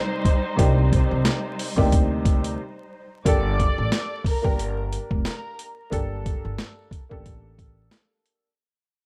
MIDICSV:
0, 0, Header, 1, 6, 480
1, 0, Start_track
1, 0, Key_signature, -2, "minor"
1, 0, Tempo, 666667
1, 422, Time_signature, 4, 2, 24, 8
1, 6520, End_track
2, 0, Start_track
2, 0, Title_t, "Violin section"
2, 0, Program_c, 0, 48
2, 0, Note_on_c, 0, 72, 81
2, 0, Note_on_c, 0, 84, 67
2, 157, Note_off_c, 0, 72, 0
2, 160, Note_off_c, 0, 84, 0
2, 2341, Note_on_c, 0, 74, 109
2, 2346, Note_on_c, 0, 86, 89
2, 3032, Note_off_c, 0, 74, 0
2, 3035, Note_off_c, 0, 86, 0
2, 3074, Note_on_c, 0, 70, 79
2, 3080, Note_on_c, 0, 82, 62
2, 3421, Note_off_c, 0, 70, 0
2, 3424, Note_off_c, 0, 82, 0
2, 3784, Note_on_c, 0, 70, 74
2, 3790, Note_on_c, 0, 82, 65
2, 3999, Note_off_c, 0, 70, 0
2, 4002, Note_off_c, 0, 82, 0
2, 6520, End_track
3, 0, Start_track
3, 0, Title_t, "String section"
3, 0, Program_c, 1, 48
3, 0, Note_on_c, 1, 55, 95
3, 0, Note_on_c, 1, 63, 92
3, 0, Note_on_c, 1, 72, 105
3, 1832, Note_off_c, 1, 55, 0
3, 1832, Note_off_c, 1, 63, 0
3, 1832, Note_off_c, 1, 72, 0
3, 6520, End_track
4, 0, Start_track
4, 0, Title_t, "Upright piano"
4, 0, Program_c, 2, 0
4, 0, Note_on_c, 2, 48, 94
4, 0, Note_on_c, 2, 58, 82
4, 0, Note_on_c, 2, 62, 86
4, 0, Note_on_c, 2, 63, 88
4, 0, Note_on_c, 2, 67, 98
4, 227, Note_off_c, 2, 48, 0
4, 229, Note_off_c, 2, 58, 0
4, 232, Note_off_c, 2, 62, 0
4, 235, Note_off_c, 2, 63, 0
4, 237, Note_off_c, 2, 67, 0
4, 406, Note_on_c, 2, 48, 94
4, 411, Note_on_c, 2, 58, 81
4, 417, Note_on_c, 2, 62, 88
4, 422, Note_on_c, 2, 63, 85
4, 427, Note_on_c, 2, 67, 101
4, 1193, Note_off_c, 2, 48, 0
4, 1196, Note_off_c, 2, 58, 0
4, 1199, Note_off_c, 2, 62, 0
4, 1201, Note_off_c, 2, 63, 0
4, 1204, Note_off_c, 2, 67, 0
4, 1269, Note_on_c, 2, 48, 96
4, 1274, Note_on_c, 2, 58, 93
4, 1279, Note_on_c, 2, 62, 87
4, 1284, Note_on_c, 2, 63, 86
4, 1290, Note_on_c, 2, 67, 101
4, 1858, Note_off_c, 2, 48, 0
4, 1860, Note_off_c, 2, 58, 0
4, 1863, Note_off_c, 2, 62, 0
4, 1865, Note_off_c, 2, 63, 0
4, 1868, Note_off_c, 2, 67, 0
4, 2338, Note_on_c, 2, 58, 85
4, 2346, Note_on_c, 2, 62, 86
4, 2352, Note_on_c, 2, 67, 88
4, 2360, Note_on_c, 2, 69, 96
4, 3120, Note_off_c, 2, 58, 0
4, 3123, Note_off_c, 2, 62, 0
4, 3126, Note_off_c, 2, 67, 0
4, 3130, Note_off_c, 2, 69, 0
4, 3183, Note_on_c, 2, 58, 93
4, 3189, Note_on_c, 2, 62, 80
4, 3196, Note_on_c, 2, 67, 82
4, 3203, Note_on_c, 2, 70, 98
4, 4063, Note_off_c, 2, 58, 0
4, 4067, Note_off_c, 2, 62, 0
4, 4070, Note_off_c, 2, 67, 0
4, 4074, Note_off_c, 2, 70, 0
4, 4250, Note_on_c, 2, 58, 94
4, 4257, Note_on_c, 2, 62, 92
4, 4264, Note_on_c, 2, 67, 84
4, 4270, Note_on_c, 2, 69, 101
4, 5035, Note_off_c, 2, 58, 0
4, 5039, Note_off_c, 2, 62, 0
4, 5042, Note_off_c, 2, 67, 0
4, 5045, Note_off_c, 2, 69, 0
4, 5107, Note_on_c, 2, 58, 95
4, 5113, Note_on_c, 2, 62, 79
4, 5121, Note_on_c, 2, 67, 80
4, 5127, Note_on_c, 2, 69, 95
4, 6101, Note_off_c, 2, 58, 0
4, 6104, Note_off_c, 2, 62, 0
4, 6108, Note_off_c, 2, 67, 0
4, 6111, Note_off_c, 2, 69, 0
4, 6520, End_track
5, 0, Start_track
5, 0, Title_t, "Upright bass"
5, 0, Program_c, 3, 32
5, 424, Note_on_c, 3, 36, 108
5, 710, Note_off_c, 3, 36, 0
5, 801, Note_on_c, 3, 36, 88
5, 879, Note_off_c, 3, 36, 0
5, 1283, Note_on_c, 3, 38, 92
5, 1836, Note_off_c, 3, 38, 0
5, 2346, Note_on_c, 3, 31, 105
5, 2631, Note_off_c, 3, 31, 0
5, 2722, Note_on_c, 3, 33, 87
5, 2800, Note_off_c, 3, 33, 0
5, 3204, Note_on_c, 3, 31, 92
5, 3568, Note_off_c, 3, 31, 0
5, 3680, Note_on_c, 3, 29, 80
5, 3759, Note_off_c, 3, 29, 0
5, 4265, Note_on_c, 3, 31, 101
5, 4550, Note_off_c, 3, 31, 0
5, 4642, Note_on_c, 3, 31, 88
5, 4720, Note_off_c, 3, 31, 0
5, 5122, Note_on_c, 3, 33, 94
5, 5675, Note_off_c, 3, 33, 0
5, 6520, End_track
6, 0, Start_track
6, 0, Title_t, "Drums"
6, 179, Note_on_c, 9, 36, 98
6, 183, Note_on_c, 9, 42, 78
6, 251, Note_off_c, 9, 36, 0
6, 255, Note_off_c, 9, 42, 0
6, 422, Note_on_c, 9, 36, 110
6, 424, Note_on_c, 9, 42, 107
6, 494, Note_off_c, 9, 36, 0
6, 496, Note_off_c, 9, 42, 0
6, 666, Note_on_c, 9, 36, 88
6, 668, Note_on_c, 9, 42, 73
6, 738, Note_off_c, 9, 36, 0
6, 740, Note_off_c, 9, 42, 0
6, 900, Note_on_c, 9, 38, 122
6, 900, Note_on_c, 9, 42, 88
6, 972, Note_off_c, 9, 38, 0
6, 972, Note_off_c, 9, 42, 0
6, 1147, Note_on_c, 9, 46, 57
6, 1219, Note_off_c, 9, 46, 0
6, 1280, Note_on_c, 9, 36, 88
6, 1352, Note_off_c, 9, 36, 0
6, 1385, Note_on_c, 9, 36, 100
6, 1385, Note_on_c, 9, 42, 98
6, 1457, Note_off_c, 9, 36, 0
6, 1457, Note_off_c, 9, 42, 0
6, 1622, Note_on_c, 9, 36, 99
6, 1625, Note_on_c, 9, 42, 82
6, 1694, Note_off_c, 9, 36, 0
6, 1697, Note_off_c, 9, 42, 0
6, 1760, Note_on_c, 9, 42, 62
6, 1832, Note_off_c, 9, 42, 0
6, 2344, Note_on_c, 9, 36, 110
6, 2347, Note_on_c, 9, 42, 103
6, 2416, Note_off_c, 9, 36, 0
6, 2419, Note_off_c, 9, 42, 0
6, 2587, Note_on_c, 9, 36, 87
6, 2590, Note_on_c, 9, 42, 69
6, 2659, Note_off_c, 9, 36, 0
6, 2662, Note_off_c, 9, 42, 0
6, 2822, Note_on_c, 9, 38, 114
6, 2823, Note_on_c, 9, 42, 86
6, 2894, Note_off_c, 9, 38, 0
6, 2895, Note_off_c, 9, 42, 0
6, 3057, Note_on_c, 9, 36, 86
6, 3068, Note_on_c, 9, 46, 54
6, 3129, Note_off_c, 9, 36, 0
6, 3140, Note_off_c, 9, 46, 0
6, 3201, Note_on_c, 9, 36, 82
6, 3273, Note_off_c, 9, 36, 0
6, 3308, Note_on_c, 9, 42, 94
6, 3380, Note_off_c, 9, 42, 0
6, 3546, Note_on_c, 9, 42, 79
6, 3618, Note_off_c, 9, 42, 0
6, 3677, Note_on_c, 9, 36, 93
6, 3749, Note_off_c, 9, 36, 0
6, 3780, Note_on_c, 9, 38, 115
6, 3788, Note_on_c, 9, 42, 89
6, 3852, Note_off_c, 9, 38, 0
6, 3860, Note_off_c, 9, 42, 0
6, 4025, Note_on_c, 9, 42, 74
6, 4097, Note_off_c, 9, 42, 0
6, 4263, Note_on_c, 9, 36, 107
6, 4267, Note_on_c, 9, 42, 101
6, 4335, Note_off_c, 9, 36, 0
6, 4339, Note_off_c, 9, 42, 0
6, 4506, Note_on_c, 9, 36, 86
6, 4507, Note_on_c, 9, 42, 70
6, 4578, Note_off_c, 9, 36, 0
6, 4579, Note_off_c, 9, 42, 0
6, 4741, Note_on_c, 9, 38, 111
6, 4741, Note_on_c, 9, 42, 84
6, 4813, Note_off_c, 9, 38, 0
6, 4813, Note_off_c, 9, 42, 0
6, 4976, Note_on_c, 9, 36, 87
6, 4986, Note_on_c, 9, 42, 73
6, 5048, Note_off_c, 9, 36, 0
6, 5058, Note_off_c, 9, 42, 0
6, 5120, Note_on_c, 9, 36, 84
6, 5192, Note_off_c, 9, 36, 0
6, 5225, Note_on_c, 9, 42, 94
6, 5226, Note_on_c, 9, 36, 97
6, 5297, Note_off_c, 9, 42, 0
6, 5298, Note_off_c, 9, 36, 0
6, 5462, Note_on_c, 9, 36, 92
6, 5465, Note_on_c, 9, 42, 79
6, 5534, Note_off_c, 9, 36, 0
6, 5537, Note_off_c, 9, 42, 0
6, 5698, Note_on_c, 9, 38, 117
6, 5706, Note_on_c, 9, 42, 86
6, 5770, Note_off_c, 9, 38, 0
6, 5778, Note_off_c, 9, 42, 0
6, 5944, Note_on_c, 9, 42, 73
6, 6016, Note_off_c, 9, 42, 0
6, 6520, End_track
0, 0, End_of_file